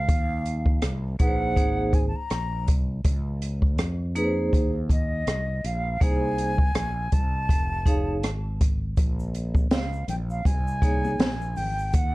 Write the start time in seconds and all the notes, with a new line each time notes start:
Already playing: F5
0.09 D#2, kick, closed hi-hat
0.46 closed hi-hat
0.66 kick
0.82 C2, cross-stick, closed hi-hat
1.19 A#1 A#3 D#4 G#4 B4 F#5, kick, closed hi-hat
1.27 C5
1.56 G#1 A#3 D#4 G#4 C5, kick, closed hi-hat
1.93 G#5, kick, closed hi-hat
2.08 A5
2.15 A#5, muted fretless electric bass stroke
2.30 A#1, cross-stick, closed hi-hat
2.68 C2, kick, closed hi-hat
3.05 C#2, kick, closed hi-hat
3.42 closed hi-hat
3.62 kick
3.78 F2, cross-stick, closed hi-hat
4.15 A#3 D#4 G#4 B4, closed hi-hat
4.24 C5
4.53 D#2, kick, closed hi-hat
4.89 D#5, kick, closed hi-hat
5.27 C2, cross-stick, closed hi-hat
5.64 A#1 F5, closed hi-hat
6.01 C2 A#3 D#4 G#4 C5 G#5, kick, closed hi-hat
6.38 closed hi-hat
6.58 kick
6.75 A#1, cross-stick, closed hi-hat
7.12 C2 A5, kick, closed hi-hat
7.49 F1, kick, closed hi-hat
7.86 D#4 G#4 C#5 F5, kick, closed hi-hat
8.23 G#1, cross-stick, closed hi-hat
8.61 kick, closed hi-hat
8.97 A#1, kick, closed hi-hat, shaker
9.20 shaker
9.35 closed hi-hat, shaker
9.55 kick, high conga, shaker
9.71 C#2 F5, snare, closed hi-hat, shaker
9.93 shaker
10.08 A#1 G5, closed hi-hat, low conga, shaker
10.30 F5, shaker
10.45 C2 G#5, kick, closed hi-hat, high conga, shaker
10.68 shaker
10.82 A#3 D#4 G#4 C#5, kick, closed hi-hat, shaker
11.05 high conga, shaker
11.19 A#1, snare, closed hi-hat, low conga, shaker
11.41 shaker
11.56 G#1 G5, open hi-hat, low conga, shaker
11.78 shaker
11.93 D#2 F#5, kick, closed hi-hat, shaker